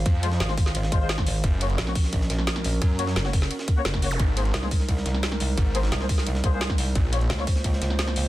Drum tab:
RD |x-x-x-x-x-x-x-x-|x-xxx-x-x-x-xxx-|x-x-x-x-x-x-x-x-|x-xxx-x-x-x-xxx-|
HH |x-x-x-o-x-x-x-o-|x-x-x-o-x-x-x-o-|x-x-x-o-x-x-x-o-|x-x-x-o-x-x-x-o-|
SD |---ooo-o-o--oo--|----oo-o-ooooo--|---ooo-o-o--oo--|----oo-o-ooooo--|
BD |o-----o---o--o--|o-----o-o-------|o-----o---o--o--|o-----o-o-------|

RD |x-x-x-x-x-x-x-x-|x-xxx-x-x-x-xxx-|
HH |x-x-x-o-x-x-x-o-|x-x-x-o-x-x-x-o-|
SD |---ooo-o-o--oo--|----oo-o-ooooo--|
BD |o-----o---o--o--|o-----o-o-------|